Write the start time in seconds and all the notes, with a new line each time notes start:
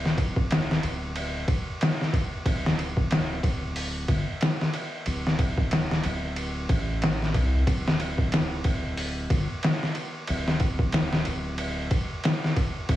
Already playing: D1
0.05 snare
0.18 kick, ride
0.36 kick
0.51 snare, ride
0.71 snare
0.83 D1, ride
1.16 ride
1.48 kick, ride
1.81 snare, ride
2.01 snare
2.13 kick, ride
2.46 D1, kick, ride
2.66 snare
2.79 ride
2.97 kick
3.11 snare, ride
3.43 D1, kick, ride
3.76 open hi-hat
4.08 G1, kick, ride
4.41 snare, ride
4.61 snare
4.74 ride
5.06 D1, ride
5.27 snare
5.39 kick, ride
5.58 kick
5.71 snare, ride
5.91 snare
6.04 D1, ride
6.36 ride
6.69 A1, kick, ride
7.02 snare, ride
7.22 snare
7.34 C2, kick, ride
7.67 D1, kick, ride
7.88 snare
8.00 ride
8.18 kick
8.32 snare, ride
8.64 D1, kick, ride
8.97 open hi-hat
9.30 G1, kick, ride
9.63 snare, ride
9.83 snare
9.95 ride
10.27 D1, ride
10.48 snare
10.60 kick, ride
10.79 kick
10.92 snare, ride
11.13 snare
11.25 D1, ride
11.58 ride
11.91 kick, ride
12.24 snare, ride
12.44 snare
12.56 kick, ride
12.89 D1, kick, ride